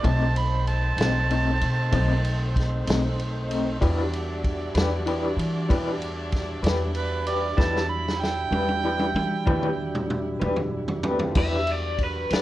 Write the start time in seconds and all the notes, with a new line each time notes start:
Already playing: C4 C5
0.03 B1 B2 A3 C4 D#4 A4 A5, kick, ride
0.36 B5, ride
0.67 A5, ride
0.97 B1 A3 C4 D#4, snare, ride
1.30 B2 A3 C4 D#4, ride
1.61 B2, ride
1.92 B1 B2 A3 C4 D#4, kick, ride
2.25 ride
2.56 kick, snare, ride
2.86 B1 A3 C4 D#4, snare, ride
3.19 ride
3.49 A3 C4 D#4, ride
3.80 E2 E3 G3 D4 E4 F#4 G4 B4 D5, kick, ride
4.13 ride
4.44 kick, ride
4.75 E2 D4 G4 B4, snare, ride
5.06 E3 D4 G4 B4, ride
5.37 E3, ride
5.69 E2 E3 D4 G4 B4, kick, ride
6.02 ride
6.32 kick, snare, ride
6.63 E2 D4 G4 B4, snare, ride
6.95 B4, ride
7.27 D4 G4 B4 D5, ride
7.57 E2 E3 F#3 G3 D4 E4 G4 B4 E5 A5, kick, snare
7.76 snare
7.90 B5
8.08 snare
8.21 G5, snare
8.51 E2 D4 G4 B4, high tom
8.69 high tom
8.84 E3 D4 G4 B4
8.99 high tom
9.14 E3, high tom
9.46 E2 E3 D4 G4 B4, kick, mid tom
9.63 mid tom
9.95 mid tom
10.10 mid tom
10.40 E2 D4 G4 B4, mid tom
10.56 floor tom
10.88 floor tom
11.04 A3 D4 G4 B4, floor tom
11.08 B3 C4
11.13 D4
11.17 E4 F4, floor tom
11.23 G4 A4
11.28 B4 C5
11.35 E2 E3 F#3 G3 D4 G4 B4 D5 E5, kick, crash
11.67 ride
11.72 D5
11.99 kick, ride
12.04 B4
12.30 E2 D4 G4 B4 D5, snare, ride